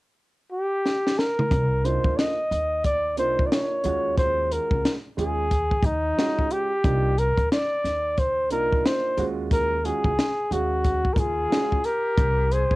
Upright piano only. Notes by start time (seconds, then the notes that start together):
1.84 A#3 D4 D#4 F4
3.17 A#3 D4 D#4 F4
3.84 G#3 C#4 F4 F#4
5.17 G#3 C#4 F4 G#4
6.17 G#3 C#4 F4 F#4
6.84 A#3 D4 D#4 F4
8.50 A#3 D4 D#4 F4
9.17 G#3 C#4 F4 F#4
9.84 G#3 C#4 F4 F#4
10.50 G#3 C#4 G#4 F5
11.50 G#3 C#4 F4 F#4